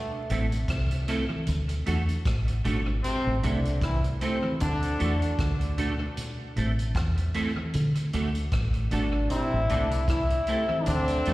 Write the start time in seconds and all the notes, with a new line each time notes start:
Already playing: A3
0.30 A1 A3 C4 E4 A4, closed hi-hat, low conga
0.52 closed hi-hat
0.68 C2, kick, cross-stick, closed hi-hat, high conga
0.91 closed hi-hat
1.08 A3 C4 E4 A4, cross-stick, closed hi-hat
1.30 high conga
1.47 D2, closed hi-hat, low conga
1.69 closed hi-hat
1.86 E2 A3 D4 F#4 A4, closed hi-hat
2.09 closed hi-hat
2.25 A1, kick, cross-stick, closed hi-hat
2.48 closed hi-hat
2.64 G#1 A3 D4 F#4 A4, closed hi-hat, low conga
3.03 C3 C4, closed hi-hat, low conga
3.27 A1
3.42 C2 D3 A3 C4 D4 E4 A4, closed hi-hat, low conga
3.65 closed hi-hat
3.81 E3 E4, kick, cross-stick, closed hi-hat, high conga
4.04 closed hi-hat
4.21 C3 A3 C4 E4 A4, closed hi-hat
4.44 high conga
4.60 D2 D3 D4, closed hi-hat, low conga
4.83 closed hi-hat
4.99 E2 A3 D4 F#4 A4, closed hi-hat
5.22 muted clean electric guitar stroke, closed hi-hat
5.39 D2, kick, cross-stick, closed hi-hat
5.61 closed hi-hat
5.78 A3 D4 F#4 A4, closed hi-hat, low conga
6.17 closed hi-hat, low conga
6.56 A1 A3 C4 E4 A4, closed hi-hat, low conga
6.79 closed hi-hat
6.95 E2, kick, cross-stick, closed hi-hat, high conga
7.18 closed hi-hat
7.34 A3 C4 E4 A4, cross-stick, closed hi-hat
7.56 high conga
7.73 D3, closed hi-hat, low conga
7.95 closed hi-hat
8.13 D2 A3 D4 F#4 A4, closed hi-hat
8.35 closed hi-hat
8.52 A1, kick, cross-stick, closed hi-hat
8.74 closed hi-hat
8.91 G#1 A3 D4 F#4 A4, closed hi-hat, low conga
9.30 C3 C4 E4, closed hi-hat, low conga
9.53 A1
9.69 C2 D3 A3 C4 D4 E4 A4, closed hi-hat, low conga
9.91 closed hi-hat
10.08 E3 E4, kick, cross-stick, closed hi-hat, high conga
10.30 closed hi-hat
10.47 C3 A3 C4 E4 A4, closed hi-hat
10.69 high conga
10.86 D2 D3 C4 D4, closed hi-hat, low conga
11.08 closed hi-hat
11.25 E2 A3 D4 F#4 A4, closed hi-hat